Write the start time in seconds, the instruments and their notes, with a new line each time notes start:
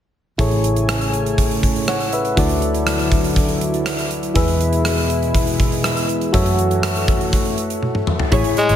0.38 fingered electric bass A1, synth keys A2 E4 G#4 A4 C#5, analog synth pad C#3 A3 G#5, kick, closed hi-hat
0.51 closed hi-hat
0.64 closed hi-hat
0.76 closed hi-hat
0.89 cross-stick, closed hi-hat
1.01 closed hi-hat
1.14 closed hi-hat
1.26 closed hi-hat
1.38 kick, closed hi-hat
1.51 closed hi-hat
1.63 kick, closed hi-hat
1.76 closed hi-hat
1.88 synth keys C#5 F#5, cross-stick, closed hi-hat
2.00 closed hi-hat
2.13 synth keys B4 E5, closed hi-hat
2.25 closed hi-hat
2.36 fingered electric bass D2, analog synth pad D3 F#3 E4, synth keys D3 E4 F#4 A4 D5, kick, closed hi-hat
2.49 closed hi-hat
2.62 closed hi-hat
2.74 closed hi-hat
2.87 cross-stick, closed hi-hat
2.99 closed hi-hat
3.12 kick, closed hi-hat
3.24 closed hi-hat
3.36 kick, closed hi-hat
3.49 closed hi-hat
3.61 closed hi-hat
3.74 closed hi-hat
3.86 cross-stick, closed hi-hat
3.98 closed hi-hat
4.11 closed hi-hat
4.23 closed hi-hat
4.34 fingered electric bass E2, analog synth pad B2 G#3 E4, synth keys E3 E4 G#4 B4 E5, kick, closed hi-hat
4.48 closed hi-hat
4.60 closed hi-hat
4.73 closed hi-hat
4.85 cross-stick, closed hi-hat
4.97 closed hi-hat
5.10 closed hi-hat
5.23 closed hi-hat
5.35 kick, closed hi-hat
5.47 closed hi-hat
5.59 kick, closed hi-hat
5.72 closed hi-hat
5.84 cross-stick, closed hi-hat
5.97 closed hi-hat
6.09 closed hi-hat
6.21 closed hi-hat
6.32 fingered electric bass F#2, analog synth pad E3 A3 F#4, synth keys F#4 A4 C#5 E5, kick, closed hi-hat
6.46 closed hi-hat
6.59 closed hi-hat
6.71 closed hi-hat
6.83 cross-stick, closed hi-hat
6.96 closed hi-hat
7.08 kick, closed hi-hat
7.21 closed hi-hat
7.33 kick, closed hi-hat
7.45 closed hi-hat
7.58 closed hi-hat
7.70 closed hi-hat
7.83 high tom
7.95 mid tom
8.07 mid tom
8.19 floor tom
8.32 fingered electric bass A1, synth keys A2 E4 G#4 C#5, clean electric guitar E4 G#4 C#5, kick, closed hi-hat
8.44 closed hi-hat
8.57 tenor saxophone G#3, muted clean electric guitar stroke, closed hi-hat
8.69 fingered electric bass G#1, clean electric guitar E4 G#4 C#5, closed hi-hat